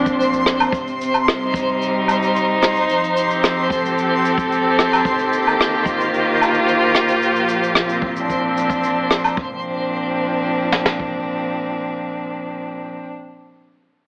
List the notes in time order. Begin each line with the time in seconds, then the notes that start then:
Already playing: F1 A#2 F3 C4 D4 C5
0.06 kick, shaker
0.21 shaker
0.33 A#1, shaker
0.46 cross-stick, shaker
0.60 low woodblock, shaker
0.72 C3, kick, shaker
0.87 shaker
1.01 shaker
1.14 low woodblock, shaker
1.28 G3, cross-stick, shaker
1.44 D#4
1.54 kick, shaker
1.82 shaker
2.08 low woodblock, shaker
2.23 shaker
2.36 shaker
2.63 cross-stick, shaker
2.76 shaker
2.89 F3, shaker
3.04 shaker
3.17 G4, shaker
3.30 C4, shaker
3.43 cross-stick, shaker
3.70 A4, kick, shaker
3.85 shaker
3.98 shaker
4.25 shaker
4.38 kick, shaker
4.52 shaker
4.79 cross-stick, shaker
4.93 low woodblock, shaker
5.05 D#3, kick, shaker
5.19 shaker
5.33 A#3, shaker
5.47 low woodblock, shaker
5.61 cross-stick, shaker
5.86 F4, kick, shaker
6.01 shaker
6.14 shaker
6.41 low woodblock, shaker
6.54 shaker
6.68 shaker
6.95 cross-stick, shaker
7.08 shaker
7.21 A#2, shaker
7.30 F3
7.36 shaker
7.49 shaker
7.63 shaker
7.75 cross-stick, shaker
7.85 C4, shaker
8.02 kick
8.16 D4, shaker
8.30 kick, shaker
8.57 shaker
8.70 kick, shaker
8.84 shaker
9.11 cross-stick, shaker
9.24 low woodblock, shaker
9.37 A#2, kick
9.46 F3
9.54 C4
9.61 D4
10.72 snare
10.86 snare
11.00 kick